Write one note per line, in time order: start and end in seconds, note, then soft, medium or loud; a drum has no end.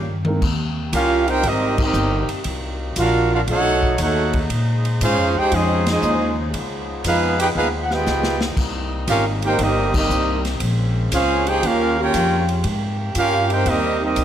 0.00 0.40 G2 medium
0.00 0.22 A#2 medium
0.00 0.22 C#3 medium
0.00 0.23 D#3 medium
0.00 0.22 G3 medium
0.00 0.23 A#3 medium
0.00 0.23 C#4 medium
0.00 0.23 G4 medium
0.25 0.40 G#3 medium
0.25 0.40 A#3 medium
0.25 0.41 C4 medium
0.25 0.41 D#4 medium
0.25 0.41 A#4 medium
0.25 high tom medium
0.40 0.91 D#2 medium
0.40 3.44 C3 medium
0.40 2.43 G3 medium
0.40 2.43 A#3 medium
0.40 2.43 G4 medium
0.40 kick medium
0.40 crash medium
0.93 1.42 C2 medium
0.93 1.26 C#4 loud
0.93 1.26 F4 medium
0.93 1.26 G4 medium
0.93 1.25 A#4 medium
0.93 1.26 F5 loud
0.93 kick soft
0.93 hi-hat pedal medium
0.93 ride medium
1.28 1.43 C4 medium
1.28 1.43 D#4 medium
1.28 1.44 D#4 medium
1.28 1.44 G4 medium
1.28 1.44 A#4 medium
1.28 1.44 C5 medium
1.28 1.44 G5 loud
1.28 ride medium
1.43 1.93 G#1 medium
1.43 1.79 G3 medium
1.43 1.78 C4 medium
1.43 1.80 C4 medium
1.43 1.78 D#4 medium
1.43 1.80 G4 medium
1.43 1.80 A#4 medium
1.43 1.80 D#5 loud
1.43 kick soft
1.43 ride medium
1.78 2.27 G3 medium
1.78 2.26 C4 medium
1.78 2.26 D#4 medium
1.78 kick loud
1.78 crash medium
1.83 2.29 C4 medium
1.83 2.29 G4 medium
1.83 2.29 A#4 medium
1.83 2.28 D#5 medium
1.93 2.27 G1 loud
1.93 hi-hat pedal medium
2.29 muted upright bass stroke soft
2.29 ride medium
2.44 2.95 C2 medium
2.44 3.46 F#3 medium
2.44 3.46 A#3 medium
2.44 3.46 D#4 medium
2.44 kick soft
2.44 ride medium
2.96 3.46 A#1 loud
2.96 3.30 D4 medium
2.96 3.29 F4 medium
2.96 3.30 F#4 loud
2.96 3.30 A#4 loud
2.96 3.30 F5 loud
2.96 kick soft
2.96 hi-hat pedal medium
2.96 ride medium
3.31 3.41 D4 medium
3.31 3.39 F4 medium
3.31 3.41 F#4 medium
3.31 3.41 A#4 medium
3.31 3.40 F5 loud
3.47 3.97 B1 medium
3.47 8.54 C#3 medium
3.47 4.49 A3 medium
3.47 3.96 A3 loud
3.47 4.48 B3 medium
3.47 6.50 D#4 medium
3.47 3.96 D#4 loud
3.47 3.97 D#4 loud
3.47 3.96 F#4 loud
3.47 3.97 A4 loud
3.47 3.96 C#5 loud
3.47 3.97 F#5 loud
3.47 kick soft
3.47 ride medium
3.83 kick medium
3.98 4.48 D#2 loud
3.98 4.40 A3 medium
3.98 4.40 D#4 medium
3.98 4.40 F#4 medium
3.98 4.40 C#5 medium
3.98 4.40 F#5 medium
3.98 kick soft
3.98 hi-hat pedal medium
3.98 ride medium
4.02 4.41 A4 medium
4.33 kick medium
4.33 ride medium
4.49 4.99 A#2 medium
4.49 6.52 G#3 medium
4.49 6.53 C5 medium
4.49 kick soft
4.49 ride medium
4.85 ride medium
5.01 5.17 G#2 medium
5.01 5.34 G#3 medium
5.01 5.34 C#4 medium
5.01 5.34 F4 medium
5.01 5.34 G#4 loud
5.01 5.34 C5 loud
5.01 5.34 F5 loud
5.01 kick soft
5.01 hi-hat pedal medium
5.01 ride medium
5.17 5.34 F2 medium
5.35 5.51 C#2 medium
5.35 5.52 D#4 medium
5.35 5.52 G4 medium
5.35 5.52 G#4 medium
5.35 5.52 C5 medium
5.35 5.52 G5 loud
5.52 6.01 F2 medium
5.52 5.87 F3 medium
5.52 5.87 G#3 medium
5.52 5.88 C#4 medium
5.52 5.87 D#4 medium
5.52 5.88 G#4 medium
5.52 5.87 C5 medium
5.52 5.87 D#5 loud
5.52 kick soft
5.52 ride medium
5.86 6.35 F3 medium
5.86 6.35 G#3 medium
5.86 6.35 D#4 medium
5.86 snare loud
5.86 ride medium
5.91 6.36 C#4 medium
5.91 6.37 G#4 medium
5.91 6.37 C5 medium
5.91 6.36 D#5 medium
6.02 6.52 D#2 loud
6.02 hi-hat pedal medium
6.53 7.03 C#2 medium
6.53 8.55 F3 medium
6.53 8.55 B3 medium
6.53 10.57 D#4 medium
6.53 kick soft
6.53 ride medium
7.04 7.54 F2 medium
7.04 7.38 G#3 medium
7.04 7.38 B3 medium
7.04 7.38 D#4 medium
7.04 7.38 F4 medium
7.04 7.38 G#4 medium
7.04 7.38 B4 loud
7.04 7.38 F5 loud
7.04 kick soft
7.04 hi-hat pedal medium
7.04 ride medium
7.39 7.48 D#4 medium
7.39 7.46 G4 medium
7.39 7.48 G#4 medium
7.39 7.48 B4 medium
7.39 7.48 G5 loud
7.39 ride medium
7.55 8.05 D#2 medium
7.55 7.67 G#3 medium
7.55 7.67 B3 medium
7.55 7.68 D#4 medium
7.55 7.67 F4 medium
7.55 7.68 G#4 medium
7.55 7.68 B4 medium
7.55 7.68 F5 loud
7.55 kick soft
7.83 7.91 F#5 medium
7.90 8.41 G#3 medium
7.90 8.42 B3 medium
7.90 8.43 F4 medium
7.90 8.41 G4 medium
7.90 8.43 B4 medium
7.90 8.43 D#5 medium
7.90 8.43 G5 loud
7.90 snare soft
8.06 8.56 C#2 loud
8.06 snare medium
8.06 hi-hat pedal medium
8.23 snare medium
8.41 snare loud
8.56 9.06 C2 medium
8.56 10.59 G3 medium
8.56 10.59 A#3 medium
8.56 11.59 C4 medium
8.56 kick medium
8.56 crash medium
9.07 9.57 G#1 medium
9.07 9.25 C#4 medium
9.07 9.24 F4 medium
9.07 9.25 G4 medium
9.07 9.25 A#4 medium
9.07 9.25 F5 loud
9.07 kick soft
9.07 hi-hat pedal medium
9.07 ride medium
9.42 9.59 A#3 medium
9.42 9.58 D#4 medium
9.42 9.59 D#4 medium
9.42 9.59 G4 medium
9.42 9.59 A#4 medium
9.42 9.59 C5 medium
9.42 9.59 G5 loud
9.42 ride medium
9.59 10.08 G1 medium
9.59 9.94 G3 medium
9.59 9.94 A#3 medium
9.59 9.96 C4 medium
9.59 9.94 D#4 medium
9.59 9.95 A#4 medium
9.59 9.95 D#5 loud
9.59 kick soft
9.59 ride medium
9.63 9.95 G4 medium
9.94 10.42 G3 medium
9.94 10.42 A#3 medium
9.94 10.43 C4 medium
9.94 10.42 D#4 medium
9.94 10.43 G4 medium
9.94 10.42 A#4 medium
9.94 10.43 D#5 medium
9.94 kick loud
9.94 crash medium
10.10 10.59 C2 medium
10.10 hi-hat pedal medium
10.45 snare soft
10.45 ride medium
10.60 11.10 A#1 medium
10.60 11.61 G#3 medium
10.60 11.62 A#3 medium
10.60 11.62 C#4 medium
10.60 kick soft
10.60 ride medium
11.12 11.61 C#2 medium
11.12 11.45 G#3 medium
11.12 11.45 C#4 medium
11.12 11.45 F4 medium
11.12 11.45 G#4 loud
11.12 11.45 C5 loud
11.12 11.45 F5 loud
11.12 kick soft
11.12 hi-hat pedal medium
11.12 ride medium
11.47 11.63 D#4 medium
11.47 11.63 G4 medium
11.47 11.63 G#4 medium
11.47 11.63 C5 medium
11.47 11.63 G5 loud
11.47 ride medium
11.63 12.12 D#2 medium
11.63 12.64 C#3 medium
11.63 12.64 G3 medium
11.63 11.98 A#3 medium
11.63 11.98 C#4 medium
11.63 12.64 C#4 medium
11.63 11.99 C#4 medium
11.63 11.98 F4 medium
11.63 12.64 F4 medium
11.63 11.99 G4 loud
11.63 11.99 A#4 medium
11.63 11.99 F5 loud
11.63 kick soft
11.63 ride medium
12.00 12.46 A#3 medium
12.00 12.46 C#4 medium
12.00 12.47 F4 medium
12.00 12.46 G4 medium
12.00 12.46 A#4 medium
12.00 12.47 C#5 medium
12.00 12.47 G5 loud
12.14 12.63 F2 loud
12.14 kick soft
12.14 hi-hat pedal medium
12.14 ride medium
12.49 ride medium
12.64 13.13 G#2 loud
12.64 14.24 C3 medium
12.64 14.24 G3 medium
12.64 14.24 A#3 medium
12.64 14.24 G4 loud
12.64 kick soft
12.64 ride medium
13.15 13.64 G2 medium
13.15 13.49 C#4 loud
13.15 13.48 F4 medium
13.15 13.49 G4 medium
13.15 13.49 A#4 loud
13.15 13.49 F5 loud
13.15 kick soft
13.15 hi-hat pedal medium
13.15 ride medium
13.50 13.66 C4 medium
13.50 13.66 D#4 medium
13.50 13.67 D#4 medium
13.50 13.66 G4 medium
13.50 13.67 A#4 medium
13.50 13.67 C5 medium
13.50 13.67 G5 loud
13.50 ride medium
13.66 14.15 D#2 medium
13.66 13.99 G3 medium
13.66 13.99 C4 medium
13.66 14.02 C4 medium
13.66 13.99 D#4 medium
13.66 14.02 G4 medium
13.66 14.02 A#4 medium
13.66 14.02 D#5 loud
13.66 kick soft
13.66 ride medium
14.00 14.24 G3 medium
14.00 14.24 C4 medium
14.00 14.24 D#4 medium
14.00 14.24 A#4 medium
14.04 14.24 G4 medium
14.04 14.24 D#5 medium
14.16 14.24 C2 loud
14.16 kick soft
14.16 hi-hat pedal medium
14.16 ride medium